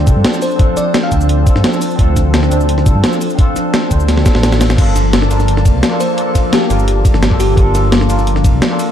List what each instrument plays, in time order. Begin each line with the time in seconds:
Already playing: ambient pad F3 D4 C5, tine electric piano C4 D4 F4 A4 C5
0.04 detuned saw bass C2, tine electric piano C4 D4, kick, closed hi-hat, cabasa
0.08 tine electric piano F4 A4
0.16 detuned saw bass G2
0.25 snare, closed hi-hat
0.34 cabasa
0.42 fm electric piano C5, open hi-hat, cabasa
0.51 cabasa
0.56 tine electric piano C4 D4, kick, closed hi-hat
0.61 tine electric piano F4 A4
0.77 fm electric piano D5, snare, closed hi-hat, cabasa
0.94 snare, closed hi-hat
1.03 fm electric piano F5
1.10 detuned saw bass D2, tine electric piano C4 D4 F4 C5, kick, closed hi-hat, cabasa
1.21 cabasa
1.29 closed hi-hat
1.43 tine electric piano C4 D4, kick, closed hi-hat, cabasa
1.48 tine electric piano F4 A4
1.56 detuned saw bass G2, snare
1.64 snare, closed hi-hat
1.73 cabasa
1.82 open hi-hat, cabasa
1.91 cabasa
1.96 detuned saw bass D2, tine electric piano C4 D4, kick, closed hi-hat
2.00 tine electric piano F4 A4
2.16 kick, snare, closed hi-hat, cabasa
2.34 snare, closed hi-hat
2.43 snare
2.50 detuned saw bass D2, tine electric piano C4 D4 F4 C5, closed hi-hat, cabasa
2.61 cabasa
2.69 closed hi-hat
2.78 snare
2.83 detuned saw bass C2, tine electric piano C4 D4, kick, closed hi-hat, cabasa
2.87 tine electric piano F4 A4
2.95 detuned saw bass G2
3.04 snare, closed hi-hat
3.13 cabasa
3.21 open hi-hat, cabasa
3.30 cabasa
3.35 tine electric piano C4 D4, kick, closed hi-hat
3.40 tine electric piano F4 A4
3.56 snare, closed hi-hat, cabasa
3.74 snare, closed hi-hat
3.89 detuned saw bass D2, tine electric piano C4 D4 F4 C5, kick, closed hi-hat, cabasa
4.00 cabasa
4.08 snare, closed hi-hat
4.17 snare
4.22 tine electric piano C4 D4, kick, snare, closed hi-hat, cabasa
4.27 tine electric piano F4 A4
4.35 detuned saw bass A1, snare
4.43 snare, closed hi-hat
4.52 snare, cabasa
4.61 snare, open hi-hat, cabasa
4.70 snare, cabasa
4.75 detuned saw bass G1, ambient pad F3 A#3 A5, tine electric piano A#3 D4, kick, closed hi-hat, crash
4.79 tine electric piano F4 A4
4.96 snare, closed hi-hat, ride, cabasa
5.13 snare, closed hi-hat
5.22 snare
5.29 detuned saw bass G1, tine electric piano A#3 D4 F4 A#4, closed hi-hat, ride, cabasa
5.40 snare, cabasa
5.48 closed hi-hat
5.57 snare
5.65 detuned saw bass F1, kick, closed hi-hat, ride, cabasa
5.75 detuned saw bass C2
5.83 snare, closed hi-hat
5.90 tine electric piano A#3 D4 F4 A4
6.00 fm electric piano C5, open hi-hat, ride, cabasa
6.14 tine electric piano A#3 D4, closed hi-hat
6.19 tine electric piano F4 A4
6.35 kick, snare, closed hi-hat, ride, cabasa
6.52 fm electric piano G4, snare, closed hi-hat
6.68 detuned saw bass G1, tine electric piano A#3 D4 F4 A#4, closed hi-hat, ride, cabasa
6.79 cabasa
6.88 closed hi-hat
7.05 kick, closed hi-hat, ride, cabasa
7.14 detuned saw bass G1, snare
7.23 snare, closed hi-hat
7.30 tine electric piano A#3 D4 F4 A4, kick
7.40 fm electric piano G4, open hi-hat, ride, cabasa
7.54 detuned saw bass G1, tine electric piano A#3 D4, kick, closed hi-hat
7.58 tine electric piano F4 A4
7.75 snare, closed hi-hat, ride, cabasa
7.92 snare, closed hi-hat
8.01 snare
8.08 detuned saw bass G1, tine electric piano A#3 D4 F4 A#4, closed hi-hat, ride, cabasa
8.19 snare, cabasa
8.27 closed hi-hat
8.36 snare
8.44 detuned saw bass F1, kick, closed hi-hat, ride, cabasa
8.54 detuned saw bass C2
8.62 snare, closed hi-hat
8.69 tine electric piano A#3 D4 F4 A4
8.79 open hi-hat, ride, cabasa